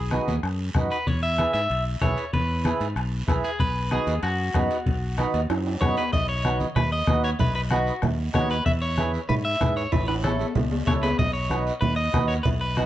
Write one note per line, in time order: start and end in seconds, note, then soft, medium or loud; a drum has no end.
0.00 0.18 B1 medium
0.00 0.40 G#4 medium
0.11 0.34 D#4 medium
0.11 0.34 F#4 medium
0.11 0.34 B4 medium
0.11 bombo rim medium
0.11 high conga medium
0.11 short guiro medium
0.27 0.40 D#2 medium
0.27 high conga medium
0.27 short guiro medium
0.43 0.69 F#2 medium
0.43 bombo rim medium
0.43 long guiro medium
0.75 0.87 F#2 medium
0.75 0.97 D#4 medium
0.75 0.97 F#4 medium
0.75 0.98 B4 medium
0.75 bombo low medium
0.75 bombo rim medium
0.75 high conga medium
0.75 short guiro medium
0.91 1.07 B4 medium
0.91 short guiro medium
1.06 1.45 E2 loud
1.06 1.22 C#5 medium
1.06 bombo low medium
1.06 high timbale medium
1.06 long guiro medium
1.23 1.52 E5 loud
1.38 1.61 E4 medium
1.38 1.61 G#4 medium
1.38 1.61 B4 medium
1.38 bombo rim medium
1.38 high conga medium
1.38 high timbale medium
1.38 short guiro medium
1.54 1.67 G#2 medium
1.54 1.83 E5 loud
1.54 high timbale medium
1.54 short guiro medium
1.70 1.95 B1 medium
1.70 high timbale medium
1.70 long guiro medium
2.01 2.14 B1 medium
2.01 2.24 E4 medium
2.01 2.24 G#4 medium
2.01 2.24 B4 medium
2.01 2.31 C#5 medium
2.01 bombo low medium
2.01 bombo rim medium
2.01 high conga medium
2.01 high timbale medium
2.01 short guiro medium
2.17 high timbale medium
2.17 short guiro medium
2.33 2.71 E2 medium
2.33 2.93 B4 medium
2.33 bombo low medium
2.33 high timbale medium
2.33 long guiro medium
2.65 2.87 E4 medium
2.65 2.87 G#4 medium
2.65 2.87 B4 medium
2.65 bombo rim medium
2.65 high conga medium
2.65 high timbale medium
2.65 short guiro medium
2.80 2.93 G#2 medium
2.80 high timbale medium
2.80 short guiro medium
2.96 3.21 B1 medium
2.96 bombo rim medium
2.96 high timbale medium
2.96 long guiro medium
3.28 3.41 B1 medium
3.28 3.50 E4 medium
3.28 3.50 G#4 medium
3.28 3.51 B4 medium
3.28 bombo low medium
3.28 bombo rim medium
3.28 high conga medium
3.28 high timbale medium
3.28 short guiro medium
3.44 3.61 G#4 medium
3.44 high timbale medium
3.44 short guiro medium
3.59 3.98 B1 loud
3.59 3.93 B4 loud
3.59 bombo low medium
3.59 high timbale medium
3.59 long guiro medium
3.91 4.14 D#4 medium
3.91 4.14 F#4 medium
3.91 4.23 G#4 medium
3.91 4.14 B4 medium
3.91 bombo rim medium
3.91 high conga medium
3.91 high timbale medium
3.91 short guiro medium
4.07 4.20 D#2 loud
4.07 high timbale medium
4.07 short guiro medium
4.23 4.48 F#2 medium
4.23 5.77 F#4 medium
4.23 bombo rim medium
4.23 high timbale medium
4.23 long guiro medium
4.54 4.67 F#2 medium
4.54 4.77 D#4 medium
4.54 4.77 F#4 medium
4.54 4.77 B4 medium
4.54 bombo low medium
4.54 bombo rim medium
4.54 high conga medium
4.54 high timbale medium
4.54 low timbale medium
4.54 short guiro medium
4.70 high timbale medium
4.70 short guiro medium
4.86 5.24 B1 medium
4.86 bombo low medium
4.86 high timbale medium
4.86 long guiro medium
5.18 5.40 D#4 medium
5.18 5.40 F#4 medium
5.18 5.41 B4 medium
5.18 bombo rim medium
5.18 high conga medium
5.18 high timbale medium
5.18 short guiro medium
5.34 5.46 D#2 medium
5.34 high timbale medium
5.34 short guiro medium
5.50 5.75 F#2 medium
5.50 bombo rim medium
5.50 high timbale medium
5.50 long guiro medium
5.67 high timbale medium
5.80 5.94 F#2 medium
5.80 6.03 D#4 medium
5.80 6.03 F#4 medium
5.80 6.03 B4 medium
5.80 5.96 C#5 medium
5.80 bombo low medium
5.80 bombo rim medium
5.80 high conga medium
5.80 low timbale medium
5.80 short guiro medium
5.97 6.13 B4 medium
5.97 low timbale medium
5.97 short guiro medium
6.13 6.64 B1 medium
6.13 6.28 D#5 loud
6.13 bombo low medium
6.13 cowbell loud
6.13 long guiro medium
6.29 6.58 C#5 loud
6.44 6.67 D#4 medium
6.44 6.67 F#4 medium
6.44 6.67 B4 medium
6.44 bombo rim medium
6.44 cowbell medium
6.44 high conga medium
6.44 short guiro medium
6.60 high conga medium
6.60 short guiro medium
6.76 7.01 D#2 medium
6.76 6.91 B4 medium
6.76 bombo rim medium
6.76 cowbell medium
6.76 low conga medium
6.76 long guiro medium
6.92 7.22 D#5 medium
7.07 7.33 D#2 medium
7.07 7.30 D#4 medium
7.07 7.30 F#4 medium
7.07 7.30 B4 medium
7.07 bombo low medium
7.07 bombo rim medium
7.07 cowbell medium
7.07 high conga medium
7.07 short guiro medium
7.24 7.29 C#5 medium
7.24 short guiro medium
7.39 7.90 B1 medium
7.39 7.54 B4 medium
7.39 bombo low medium
7.39 cowbell loud
7.39 low conga medium
7.39 long guiro medium
7.55 7.60 B4 medium
7.71 7.93 D#4 medium
7.71 7.93 F#4 medium
7.71 8.01 F#4 medium
7.71 7.93 B4 medium
7.71 bombo rim medium
7.71 cowbell medium
7.71 high conga medium
7.71 short guiro medium
7.87 short guiro medium
8.02 8.28 D#2 medium
8.02 bombo rim medium
8.02 cowbell medium
8.02 low conga medium
8.02 long guiro medium
8.34 8.60 D#2 medium
8.34 8.56 D#4 medium
8.34 8.57 F#4 medium
8.34 8.57 B4 medium
8.34 8.49 C#5 medium
8.34 bombo low medium
8.34 bombo rim medium
8.34 cowbell medium
8.34 high conga medium
8.34 low timbale medium
8.34 short guiro medium
8.50 8.65 B4 medium
8.50 short guiro medium
8.66 9.16 E2 medium
8.66 8.71 E5 loud
8.66 bombo low medium
8.66 cowbell loud
8.66 long guiro medium
8.82 9.11 C#5 loud
8.98 9.20 E4 medium
8.98 9.20 G#4 medium
8.98 9.20 B4 medium
8.98 bombo rim medium
8.98 cowbell medium
8.98 high conga medium
8.98 short guiro medium
9.14 short guiro medium
9.29 9.54 G#2 medium
9.29 9.34 B4 medium
9.29 cowbell medium
9.29 low conga medium
9.29 long guiro medium
9.45 9.76 E5 medium
9.60 9.86 G#2 medium
9.60 9.83 E4 medium
9.60 9.83 G#4 medium
9.60 9.83 B4 medium
9.60 bombo low medium
9.60 bombo rim medium
9.60 cowbell medium
9.60 high conga medium
9.60 low conga medium
9.60 short guiro medium
9.77 9.92 C#5 medium
9.77 short guiro medium
9.92 10.43 A1 medium
9.92 10.07 B4 medium
9.92 bombo low medium
9.92 cowbell loud
9.92 high timbale medium
9.92 long guiro medium
10.08 10.13 B4 medium
10.08 high timbale loud
10.23 10.46 E4 medium
10.23 10.46 A4 medium
10.23 10.54 A4 medium
10.23 10.46 C#5 medium
10.23 bombo rim medium
10.23 cowbell medium
10.23 high conga medium
10.23 low timbale medium
10.23 short guiro medium
10.39 low timbale medium
10.39 short guiro medium
10.55 10.81 C#2 medium
10.55 cowbell medium
10.55 low conga medium
10.55 low timbale medium
10.55 long guiro medium
10.71 low timbale medium
10.86 11.13 C#2 medium
10.86 11.09 E4 medium
10.86 11.09 A4 medium
10.86 11.09 C#5 medium
10.86 10.92 C#5 medium
10.86 bombo low medium
10.86 bombo rim medium
10.86 cowbell medium
10.86 high conga medium
10.86 low timbale medium
10.86 short guiro medium
11.03 11.19 B4 medium
11.03 low timbale loud
11.03 short guiro medium
11.19 11.70 B1 medium
11.19 11.33 D#5 loud
11.19 bombo low medium
11.19 cowbell loud
11.19 low conga medium
11.19 long guiro medium
11.33 11.64 C#5 loud
11.49 11.72 D#4 medium
11.49 11.73 F#4 medium
11.49 11.73 B4 medium
11.49 bombo rim medium
11.49 cowbell medium
11.49 high conga medium
11.49 short guiro medium
11.67 short guiro medium
11.81 12.08 D#2 medium
11.81 11.96 B4 medium
11.81 cowbell medium
11.81 low conga medium
11.81 long guiro medium
11.96 12.28 D#5 loud
12.13 12.39 D#2 medium
12.13 12.36 D#4 medium
12.13 12.36 F#4 medium
12.13 12.36 B4 medium
12.13 bombo low medium
12.13 bombo rim medium
12.13 cowbell medium
12.13 high conga medium
12.13 short guiro medium
12.28 12.33 C#5 medium
12.28 short guiro medium
12.43 12.86 B1 medium
12.43 12.48 B4 medium
12.43 bombo low medium
12.43 cowbell loud
12.43 low conga medium
12.43 long guiro medium
12.61 12.76 B4 medium
12.77 12.86 D#4 medium
12.77 12.86 F#4 medium
12.77 12.86 B4 medium
12.77 bombo rim medium
12.77 cowbell medium
12.77 high conga medium
12.77 short guiro medium